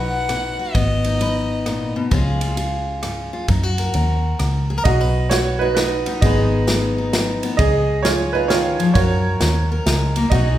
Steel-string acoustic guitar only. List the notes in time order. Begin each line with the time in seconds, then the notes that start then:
Already playing: F#3 D#4 F#4 B4
0.29 B2
0.59 F#4
0.75 G#2 B3
1.06 D#4
1.20 G#3 B4
1.66 A#2
1.96 B2
2.11 C#3 G#3 C#4 F4 G#4
2.41 F4
2.57 G#3 G#4
3.03 G#2
3.33 F4
3.48 F#3 D#4
3.63 F#4
3.79 A#4
3.94 C#4 A#4
4.40 C#3
4.70 G#4
4.78 A#4
4.85 B2 G#4
5.01 B4
5.32 F#3
5.62 F#4
5.77 F#3
6.07 D#4
6.22 G#2 G#3 B3 D#4 B4
6.67 G#3
6.98 D#4
7.14 G#3
7.44 B3
7.59 C#3 G#4
8.05 G#3
8.35 F4
8.50 D#3
8.79 F3
8.96 F#3 A#4
9.41 C#4
9.72 A#4
9.87 G#3
10.17 A#3
10.32 B2 F#3 D#4 F#4 G#4